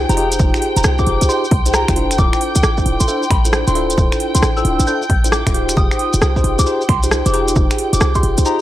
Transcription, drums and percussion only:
0.09 closed hi-hat medium
0.09 maracas soft
0.17 open hi-hat loud
0.32 closed hi-hat medium
0.32 maracas medium
0.39 kick loud
0.39 maracas medium
0.54 finger snap medium
0.54 maracas soft
0.62 open hi-hat loud
0.76 closed hi-hat medium
0.76 maracas medium
0.84 cross-stick loud
0.84 maracas medium
0.98 kick medium
0.98 maracas soft
1.07 open hi-hat loud
1.21 closed hi-hat medium
1.21 maracas medium
1.29 maracas medium
1.44 maracas soft
1.51 kick loud
1.51 open hi-hat loud
1.66 closed hi-hat medium
1.66 maracas medium
1.74 cross-stick loud
1.74 maracas medium
1.88 finger snap medium
1.88 kick medium
1.88 closed hi-hat medium
1.88 maracas soft
1.96 open hi-hat loud
2.11 finger snap soft
2.11 closed hi-hat medium
2.11 maracas medium
2.18 kick loud
2.18 maracas medium
2.33 finger snap medium
2.33 maracas soft
2.41 open hi-hat loud
2.55 closed hi-hat medium
2.55 maracas medium
2.63 cross-stick loud
2.63 maracas medium
2.77 kick medium
2.77 maracas soft
2.86 open hi-hat loud
3.00 closed hi-hat medium
3.00 maracas medium
3.08 maracas medium
3.23 maracas soft
3.30 finger snap medium
3.30 kick loud
3.30 open hi-hat loud
3.45 closed hi-hat medium
3.45 maracas medium
3.53 cross-stick loud
3.53 maracas medium
3.67 closed hi-hat medium
3.67 maracas soft
3.75 open hi-hat loud
3.90 closed hi-hat medium
3.90 maracas medium
3.98 kick loud
3.98 maracas medium
4.12 finger snap medium
4.12 maracas soft
4.20 open hi-hat loud
4.35 closed hi-hat medium
4.35 maracas medium
4.43 cross-stick loud
4.43 maracas medium
4.57 maracas soft
4.65 open hi-hat loud
4.80 closed hi-hat medium
4.80 maracas medium
4.87 maracas medium
5.02 maracas soft
5.10 kick loud
5.10 open hi-hat loud
5.24 closed hi-hat medium
5.24 maracas medium
5.32 cross-stick loud
5.32 maracas medium
5.47 finger snap medium
5.47 kick medium
5.47 closed hi-hat medium
5.47 maracas soft
5.54 open hi-hat loud
5.69 finger snap soft
5.69 closed hi-hat medium
5.69 maracas medium
5.77 kick loud
5.77 maracas medium
5.91 finger snap medium
5.91 maracas soft
5.99 open hi-hat loud
6.13 closed hi-hat medium
6.13 maracas medium
6.22 cross-stick loud
6.22 maracas medium
6.36 kick medium
6.36 maracas soft
6.44 open hi-hat loud
6.59 closed hi-hat medium
6.59 maracas medium
6.66 maracas medium
6.81 maracas soft
6.89 finger snap medium
6.89 kick loud
6.89 open hi-hat loud
7.03 closed hi-hat medium
7.03 maracas medium
7.11 cross-stick loud
7.11 maracas medium
7.26 closed hi-hat medium
7.26 maracas soft
7.34 open hi-hat loud
7.48 closed hi-hat medium
7.48 maracas medium
7.56 kick loud
7.56 maracas medium
7.71 finger snap medium
7.71 closed hi-hat soft
7.71 maracas soft
7.78 open hi-hat loud
7.93 closed hi-hat medium
7.93 maracas medium
8.00 cross-stick loud
8.00 maracas medium
8.15 kick medium
8.15 closed hi-hat soft
8.15 maracas soft
8.23 open hi-hat loud
8.37 closed hi-hat medium
8.37 maracas medium
8.45 maracas medium

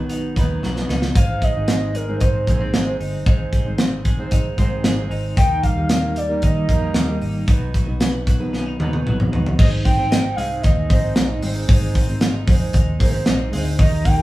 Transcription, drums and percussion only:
0.10 closed hi-hat medium
0.36 kick medium
0.36 closed hi-hat medium
0.63 snare medium
0.76 snare medium
0.89 snare medium
1.02 snare medium
1.15 kick loud
1.15 closed hi-hat loud
1.42 kick medium
1.42 closed hi-hat medium
1.68 snare loud
1.68 closed hi-hat medium
1.95 closed hi-hat medium
2.20 kick medium
2.20 closed hi-hat medium
2.47 kick medium
2.47 closed hi-hat medium
2.74 snare loud
2.74 closed hi-hat medium
3.01 open hi-hat soft
3.26 kick loud
3.26 closed hi-hat medium
3.53 kick medium
3.53 closed hi-hat medium
3.78 snare loud
3.78 closed hi-hat medium
4.05 kick medium
4.05 closed hi-hat medium
4.31 kick medium
4.31 closed hi-hat medium
4.58 kick medium
4.58 closed hi-hat medium
4.84 snare loud
4.84 closed hi-hat medium
5.11 open hi-hat soft
5.37 kick loud
5.37 closed hi-hat medium
5.63 kick medium
5.63 closed hi-hat medium
5.89 snare loud
5.89 closed hi-hat medium
6.16 closed hi-hat medium
6.42 kick medium
6.42 closed hi-hat medium
6.69 kick medium
6.69 closed hi-hat medium
6.94 snare loud
6.94 closed hi-hat medium
7.21 open hi-hat soft
7.48 kick loud
7.48 closed hi-hat medium
7.74 kick medium
7.74 closed hi-hat medium
8.00 snare loud
8.00 closed hi-hat medium
8.27 kick medium
8.27 closed hi-hat medium
8.54 snare soft
8.80 high tom medium
8.93 high tom medium
9.07 mid tom medium
9.20 mid tom medium
9.33 floor tom medium
9.46 floor tom medium
9.59 kick loud
9.59 crash loud
9.85 kick medium
9.85 hi-hat pedal medium
9.85 open hi-hat medium
10.12 snare loud
10.12 hi-hat pedal medium
10.12 open hi-hat loud
10.38 hi-hat pedal medium
10.38 open hi-hat medium
10.63 kick loud
10.63 snare soft
10.63 hi-hat pedal medium
10.63 open hi-hat medium
10.90 kick medium
10.90 hi-hat pedal medium
10.90 open hi-hat medium
11.16 snare loud
11.16 hi-hat pedal medium
11.16 open hi-hat medium
11.42 hi-hat pedal medium
11.42 open hi-hat medium
11.69 kick loud
11.69 hi-hat pedal medium
11.69 open hi-hat loud
11.95 kick medium
11.95 hi-hat pedal medium
11.95 open hi-hat medium
12.21 snare loud
12.21 hi-hat pedal medium
12.21 open hi-hat loud
12.48 kick loud
12.48 hi-hat pedal medium
12.48 open hi-hat medium
12.73 kick loud
12.73 hi-hat pedal medium
12.73 open hi-hat medium
13.00 kick loud
13.00 hi-hat pedal medium
13.00 open hi-hat medium
13.26 snare loud
13.26 hi-hat pedal medium
13.26 open hi-hat medium
13.53 hi-hat pedal medium
13.53 open hi-hat medium
13.79 kick loud
13.79 hi-hat pedal medium
13.79 open hi-hat loud
14.05 kick medium
14.05 hi-hat pedal medium
14.05 open hi-hat medium

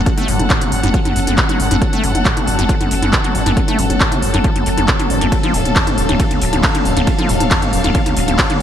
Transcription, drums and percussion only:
0.06 kick loud
0.06 closed hi-hat medium
0.18 closed hi-hat medium
0.18 mid tom medium
0.28 open hi-hat loud
0.39 closed hi-hat medium
0.39 mid tom medium
0.50 kick loud
0.50 clap loud
0.50 closed hi-hat medium
0.61 closed hi-hat medium
0.61 mid tom medium
0.72 open hi-hat medium
0.83 closed hi-hat medium
0.83 mid tom medium
0.94 kick loud
0.94 closed hi-hat medium
1.05 closed hi-hat medium
1.05 mid tom medium
1.16 open hi-hat loud
1.27 closed hi-hat medium
1.27 mid tom medium
1.38 kick loud
1.38 clap loud
1.38 closed hi-hat medium
1.49 closed hi-hat medium
1.49 mid tom medium
1.60 open hi-hat loud
1.71 closed hi-hat medium
1.71 mid tom medium
1.82 kick loud
1.82 closed hi-hat medium
1.93 closed hi-hat medium
1.93 mid tom medium
2.04 open hi-hat loud
2.15 closed hi-hat medium
2.15 mid tom medium
2.25 kick loud
2.25 clap loud
2.25 closed hi-hat medium
2.37 closed hi-hat medium
2.37 mid tom loud
2.47 open hi-hat loud
2.59 closed hi-hat medium
2.59 mid tom medium
2.69 kick loud
2.69 closed hi-hat medium
2.81 closed hi-hat medium
2.81 mid tom medium
2.91 open hi-hat loud
3.02 closed hi-hat medium
3.02 mid tom loud
3.13 kick loud
3.13 clap loud
3.13 closed hi-hat medium
3.24 closed hi-hat medium
3.24 mid tom medium
3.35 open hi-hat medium
3.46 closed hi-hat medium
3.46 mid tom loud
3.57 kick loud
3.57 closed hi-hat medium
3.68 closed hi-hat medium
3.68 mid tom medium
3.79 open hi-hat loud
3.90 closed hi-hat medium
3.90 mid tom medium
4.00 kick loud
4.00 clap loud
4.00 closed hi-hat medium
4.12 closed hi-hat medium
4.12 mid tom loud
4.22 open hi-hat loud
4.34 closed hi-hat medium
4.34 mid tom medium
4.44 kick loud
4.44 closed hi-hat medium
4.56 closed hi-hat medium
4.56 mid tom medium
4.66 open hi-hat loud
4.78 closed hi-hat medium
4.78 mid tom medium
4.88 kick loud
4.88 clap loud
4.88 closed hi-hat medium
5.00 closed hi-hat medium
5.00 mid tom loud
5.10 open hi-hat medium
5.21 closed hi-hat medium
5.21 mid tom medium
5.32 kick loud
5.32 closed hi-hat medium
5.32 ride medium
5.43 closed hi-hat medium
5.43 mid tom loud
5.54 open hi-hat loud
5.65 closed hi-hat medium
5.65 mid tom medium
5.76 kick loud
5.76 clap loud
5.76 closed hi-hat medium
5.76 ride medium
5.87 closed hi-hat medium
5.87 mid tom loud
5.98 open hi-hat loud
6.09 closed hi-hat medium
6.09 mid tom loud
6.20 kick loud
6.20 closed hi-hat medium
6.20 ride medium
6.31 closed hi-hat medium
6.31 mid tom medium
6.42 open hi-hat loud
6.53 closed hi-hat medium
6.53 mid tom loud
6.63 kick loud
6.63 clap loud
6.63 closed hi-hat medium
6.63 ride medium
6.75 closed hi-hat medium
6.75 mid tom loud
6.85 open hi-hat medium
6.97 closed hi-hat medium
6.97 mid tom medium
7.07 kick loud
7.07 closed hi-hat medium
7.07 ride medium
7.19 closed hi-hat medium
7.19 mid tom loud
7.29 open hi-hat loud
7.40 closed hi-hat medium
7.40 mid tom loud
7.51 kick loud
7.51 clap loud
7.51 closed hi-hat medium
7.51 ride medium
7.62 closed hi-hat medium
7.62 mid tom medium
7.73 open hi-hat medium
7.84 closed hi-hat medium
7.84 mid tom medium
7.95 kick loud
7.95 closed hi-hat medium
7.95 ride medium
8.06 closed hi-hat medium
8.06 mid tom loud
8.17 open hi-hat loud
8.28 closed hi-hat medium
8.28 mid tom medium
8.39 kick loud
8.39 clap loud
8.39 closed hi-hat medium
8.39 ride medium
8.50 closed hi-hat medium
8.50 mid tom loud

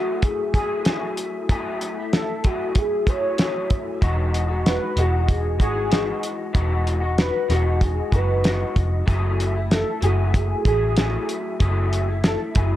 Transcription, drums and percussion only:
0.22 kick medium
0.22 closed hi-hat medium
0.54 kick medium
0.54 closed hi-hat medium
0.85 snare loud
0.85 closed hi-hat medium
1.17 closed hi-hat medium
1.49 kick medium
1.49 closed hi-hat medium
1.81 closed hi-hat medium
2.13 snare loud
2.13 closed hi-hat medium
2.44 kick medium
2.44 closed hi-hat medium
2.75 kick medium
2.75 closed hi-hat medium
3.07 kick medium
3.07 closed hi-hat medium
3.38 snare medium
3.38 closed hi-hat medium
3.70 kick medium
3.70 closed hi-hat medium
4.02 kick medium
4.02 closed hi-hat medium
4.34 closed hi-hat medium
4.66 snare medium
4.66 closed hi-hat medium
4.97 closed hi-hat medium
5.29 kick medium
5.29 closed hi-hat medium
5.60 kick medium
5.60 closed hi-hat medium
5.92 snare medium
5.92 closed hi-hat medium
6.23 closed hi-hat medium
6.55 kick medium
6.55 closed hi-hat medium
6.87 closed hi-hat medium
7.18 snare loud
7.18 closed hi-hat medium
7.50 snare soft
7.50 closed hi-hat medium
7.81 kick medium
7.81 closed hi-hat medium
8.12 kick medium
8.12 closed hi-hat medium
8.44 snare loud
8.44 closed hi-hat medium
8.76 kick medium
8.76 closed hi-hat medium
9.08 kick medium
9.08 closed hi-hat medium
9.40 closed hi-hat medium
9.71 snare medium
9.71 closed hi-hat medium
10.02 closed hi-hat medium
10.34 kick medium
10.34 closed hi-hat medium
10.65 kick medium
10.65 closed hi-hat medium
10.97 snare loud
10.97 closed hi-hat medium
11.29 closed hi-hat medium
11.60 kick medium
11.60 closed hi-hat medium
11.93 closed hi-hat medium
12.24 snare loud
12.24 closed hi-hat medium
12.55 kick medium
12.55 closed hi-hat medium

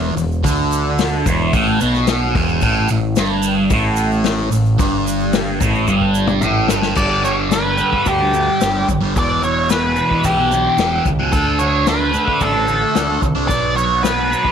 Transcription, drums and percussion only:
0.17 open hi-hat soft
0.17 shaker medium
0.32 shaker soft
0.44 kick loud
0.44 open hi-hat medium
0.44 shaker medium
0.71 open hi-hat soft
0.71 shaker medium
0.99 snare loud
0.99 open hi-hat medium
0.99 shaker medium
1.26 kick loud
1.26 open hi-hat medium
1.26 shaker medium
1.53 kick loud
1.53 open hi-hat medium
1.53 shaker medium
1.80 open hi-hat medium
1.80 shaker medium
1.94 snare soft
1.94 shaker soft
2.07 snare loud
2.07 open hi-hat medium
2.07 shaker medium
2.35 kick loud
2.35 open hi-hat medium
2.49 shaker soft
2.61 kick loud
2.61 open hi-hat medium
2.61 shaker medium
2.88 open hi-hat soft
2.88 shaker medium
3.16 snare loud
3.16 open hi-hat medium
3.16 shaker medium
3.43 open hi-hat soft
3.43 shaker medium
3.70 kick loud
3.70 open hi-hat medium
3.70 shaker medium
3.96 open hi-hat soft
3.96 shaker medium
4.12 shaker soft
4.24 snare loud
4.24 open hi-hat medium
4.24 shaker medium
4.52 open hi-hat medium
4.52 shaker medium
4.66 shaker soft
4.79 kick loud
4.79 open hi-hat medium
4.79 shaker medium
5.07 open hi-hat soft
5.07 shaker medium
5.20 shaker soft
5.33 snare loud
5.33 open hi-hat medium
5.33 shaker medium
5.60 kick loud
5.60 open hi-hat soft
5.60 shaker loud
5.75 shaker soft
5.87 kick medium
5.87 shaker medium
6.01 kick medium
6.15 shaker medium
6.27 mid tom medium
6.27 shaker soft
6.41 mid tom medium
6.41 shaker medium
6.68 snare medium
6.68 shaker loud
6.82 snare medium
6.82 shaker soft
6.95 kick loud
6.95 crash medium
6.95 shaker medium
7.25 shaker medium
7.51 snare loud
7.51 open hi-hat soft
7.51 shaker medium
7.78 shaker medium
7.93 kick medium
8.05 kick medium
8.05 open hi-hat soft
8.05 shaker medium
8.34 shaker medium
8.61 snare loud
8.61 open hi-hat soft
8.61 shaker medium
8.89 kick medium
8.89 shaker medium
9.16 kick loud
9.16 open hi-hat soft
9.16 shaker medium
9.43 shaker medium
9.70 snare loud
9.70 open hi-hat soft
9.70 shaker medium
9.96 shaker medium
10.11 kick medium
10.24 kick medium
10.24 open hi-hat medium
10.24 shaker medium
10.52 shaker medium
10.78 snare loud
10.78 open hi-hat soft
10.78 shaker medium
11.05 kick medium
11.05 shaker medium
11.32 kick loud
11.32 open hi-hat soft
11.32 shaker medium
11.59 shaker medium
11.86 snare loud
11.86 open hi-hat soft
11.86 shaker medium
12.14 shaker medium
12.28 kick medium
12.41 kick medium
12.41 open hi-hat soft
12.41 shaker medium
12.68 shaker medium
12.95 snare loud
12.95 open hi-hat soft
12.95 shaker medium
13.22 kick medium
13.22 shaker medium
13.48 kick loud
13.48 open hi-hat soft
13.48 shaker medium
13.78 shaker medium
14.04 snare loud
14.04 open hi-hat soft
14.04 shaker medium
14.33 shaker medium
14.45 kick medium

